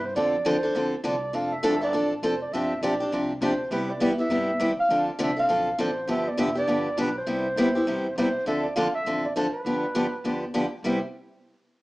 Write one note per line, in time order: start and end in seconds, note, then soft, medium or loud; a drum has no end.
0.00 0.14 G2 medium
0.05 0.15 C5 medium
0.15 0.44 F2 medium
0.15 0.35 D3 medium
0.15 0.35 F3 medium
0.15 0.35 C4 medium
0.15 0.35 D4 medium
0.15 0.35 A4 medium
0.15 0.48 D5 loud
0.45 0.73 E2 medium
0.45 0.55 D3 medium
0.45 0.56 F3 loud
0.45 0.56 C4 medium
0.45 0.56 D4 loud
0.45 0.56 A4 loud
0.45 0.93 C5 medium
0.63 0.75 C4 soft
0.63 0.75 D4 medium
0.63 0.74 A4 medium
0.74 1.03 D2 medium
0.74 0.94 D3 medium
0.74 0.94 F3 medium
0.74 0.94 C4 medium
0.74 0.94 D4 medium
0.74 0.95 A4 medium
1.03 1.32 C2 loud
1.03 1.14 D3 medium
1.03 1.14 F3 medium
1.03 1.15 C4 medium
1.03 1.15 D4 medium
1.03 1.15 A4 loud
1.03 1.36 D5 medium
1.33 1.62 F1 medium
1.33 1.53 F3 medium
1.33 1.53 C4 medium
1.33 1.53 D4 medium
1.33 1.54 A4 medium
1.33 1.54 F5 loud
1.52 1.81 E5 loud
1.63 1.92 G1 medium
1.63 1.74 F3 loud
1.63 1.74 C4 loud
1.63 1.74 D4 loud
1.63 1.74 A4 loud
1.81 1.93 C4 soft
1.81 1.93 D4 soft
1.81 1.93 A4 medium
1.81 2.10 D5 loud
1.93 2.22 A1 medium
1.93 2.12 F3 medium
1.93 2.13 C4 medium
1.93 2.13 D4 medium
1.93 2.13 A4 medium
2.22 2.51 F1 medium
2.22 2.33 F3 medium
2.22 2.34 C4 medium
2.22 2.34 D4 medium
2.22 2.34 A4 medium
2.22 2.40 C5 medium
2.42 2.54 D5 medium
2.52 2.81 G1 medium
2.52 2.72 C3 medium
2.52 2.72 F3 medium
2.52 2.73 C4 medium
2.52 2.73 D4 medium
2.52 2.73 G4 medium
2.52 2.82 E5 loud
2.81 3.10 B1 medium
2.81 2.93 C3 loud
2.81 2.93 F3 medium
2.81 2.93 C4 medium
2.81 2.94 D4 loud
2.81 2.94 G4 medium
2.81 3.26 D5 medium
3.00 3.12 C4 soft
3.00 3.12 D4 soft
3.00 3.11 G4 medium
3.11 3.40 C2 medium
3.11 3.31 C3 medium
3.11 3.31 F3 medium
3.11 3.32 C4 medium
3.11 3.32 D4 medium
3.11 3.32 G4 medium
3.41 3.70 D2 medium
3.41 3.52 C3 medium
3.41 3.52 F3 medium
3.41 3.52 C4 medium
3.41 3.52 D4 loud
3.41 3.53 G4 medium
3.41 3.70 C5 medium
3.71 3.99 C2 medium
3.71 3.90 C3 medium
3.71 3.91 G3 medium
3.71 3.91 B3 medium
3.71 3.91 E4 medium
3.71 3.91 G4 medium
3.71 3.91 B4 medium
3.90 4.01 D5 medium
4.00 4.28 E2 medium
4.00 4.11 C3 medium
4.00 4.11 G3 medium
4.00 4.11 B3 medium
4.00 4.12 E4 medium
4.00 4.12 G4 loud
4.00 4.09 D5 medium
4.18 4.30 B3 soft
4.18 4.30 E4 soft
4.18 4.30 G4 medium
4.18 4.74 E5 loud
4.29 4.58 G2 medium
4.29 4.49 C3 medium
4.29 4.50 G3 medium
4.29 4.50 B3 medium
4.29 4.50 E4 medium
4.29 4.50 G4 medium
4.60 4.76 D#2 loud
4.60 4.70 C3 medium
4.60 4.71 G3 medium
4.60 4.71 B3 medium
4.60 4.71 E4 medium
4.60 4.71 G4 medium
4.77 5.06 F5 loud
4.77 muted upright bass stroke soft
4.89 5.18 D2 medium
4.89 5.09 D3 medium
4.89 5.09 F3 medium
4.89 5.09 C4 medium
4.89 5.10 D4 medium
4.89 5.10 A4 medium
5.19 5.48 C2 medium
5.19 5.30 D3 loud
5.19 5.30 F3 loud
5.19 5.30 C4 loud
5.19 5.30 D4 loud
5.19 5.30 A4 loud
5.19 5.37 E5 medium
5.37 5.48 C4 soft
5.37 5.48 D4 soft
5.37 5.48 A4 medium
5.37 5.81 F5 loud
5.49 5.78 B1 medium
5.49 5.68 D3 medium
5.49 5.68 F3 medium
5.49 5.69 C4 medium
5.49 5.69 D4 medium
5.49 5.69 A4 medium
5.78 6.07 A1 medium
5.78 5.89 D3 medium
5.78 5.89 F3 medium
5.78 5.89 C4 medium
5.78 5.90 D4 medium
5.78 5.90 A4 medium
5.78 6.09 C5 medium
6.08 6.37 G1 medium
6.08 6.27 D3 medium
6.08 6.28 F3 medium
6.08 6.28 B3 medium
6.08 6.28 D4 medium
6.08 6.28 G4 medium
6.08 6.29 E5 loud
6.28 6.41 D5 medium
6.37 6.66 F1 medium
6.37 6.48 D3 medium
6.37 6.49 F3 medium
6.37 6.49 B3 medium
6.37 6.49 D4 loud
6.37 6.49 G4 loud
6.37 6.56 E5 medium
6.55 6.67 B3 soft
6.55 6.68 D4 soft
6.55 6.67 G4 medium
6.55 6.96 D5 loud
6.67 6.96 G1 medium
6.67 6.87 D3 medium
6.67 6.87 F3 medium
6.67 6.87 B3 medium
6.67 6.87 D4 medium
6.67 6.88 G4 medium
6.97 7.26 B1 loud
6.97 7.08 D3 medium
6.97 7.08 F3 medium
6.97 7.08 B3 medium
6.97 7.08 D4 loud
6.97 7.08 G4 loud
6.97 7.15 B4 medium
7.18 8.13 C5 medium
7.27 7.55 C2 medium
7.27 7.46 C3 medium
7.27 7.46 G3 medium
7.27 7.46 B3 medium
7.27 7.47 E4 medium
7.27 7.47 G4 medium
7.56 7.85 D2 medium
7.56 7.68 C3 medium
7.56 7.68 G3 loud
7.56 7.68 B3 loud
7.56 7.68 E4 loud
7.56 7.68 G4 medium
7.75 7.87 B3 soft
7.75 7.87 E4 medium
7.75 7.86 G4 medium
7.87 8.15 E2 medium
7.87 8.06 C3 medium
7.87 8.06 G3 medium
7.87 8.06 B3 medium
7.87 8.07 E4 medium
7.87 8.07 G4 medium
8.16 8.32 B1 medium
8.16 8.27 C3 medium
8.16 8.28 G3 medium
8.16 8.28 B3 medium
8.16 8.28 E4 medium
8.16 8.28 G4 medium
8.16 8.45 C5 medium
8.34 muted upright bass stroke soft
8.46 8.93 D2 medium
8.46 8.65 D3 medium
8.46 8.66 F3 medium
8.46 8.66 C4 medium
8.46 8.66 D4 medium
8.46 8.66 A4 medium
8.46 8.63 E5 loud
8.63 8.74 D5 medium
8.76 8.86 D3 medium
8.76 8.86 F3 loud
8.76 8.87 C4 medium
8.76 8.87 D4 medium
8.76 8.87 A4 loud
8.76 8.94 F5 loud
8.95 9.22 E5 loud
9.05 9.52 A1 medium
9.05 9.25 D3 medium
9.05 9.25 F3 medium
9.05 9.25 C4 medium
9.05 9.26 D4 medium
9.05 9.26 A4 medium
9.25 9.34 D5 medium
9.36 9.46 D3 medium
9.36 9.46 F3 medium
9.36 9.46 C4 medium
9.36 9.46 D4 medium
9.36 9.46 A4 loud
9.36 9.51 C5 medium
9.53 10.50 B4 medium
9.65 10.12 G1 medium
9.65 9.84 D3 medium
9.65 9.84 F3 medium
9.65 9.85 B3 medium
9.65 9.85 D4 medium
9.65 9.85 G4 medium
9.95 10.05 D3 medium
9.95 10.05 F3 loud
9.95 10.05 B3 medium
9.95 10.06 D4 medium
9.95 10.06 G4 medium
10.24 10.72 D2 medium
10.24 10.44 D3 medium
10.24 10.44 F3 medium
10.24 10.44 B3 medium
10.24 10.44 D4 medium
10.24 10.44 G4 medium
10.54 10.64 D3 medium
10.54 10.65 F3 medium
10.54 10.65 B3 medium
10.54 10.65 D4 medium
10.54 10.65 G4 medium
10.83 10.99 C2 medium
10.83 10.98 C3 medium
10.83 10.98 G3 medium
10.83 10.98 B3 medium
10.83 10.99 E4 medium
10.83 10.99 G4 medium
10.83 11.01 C5 medium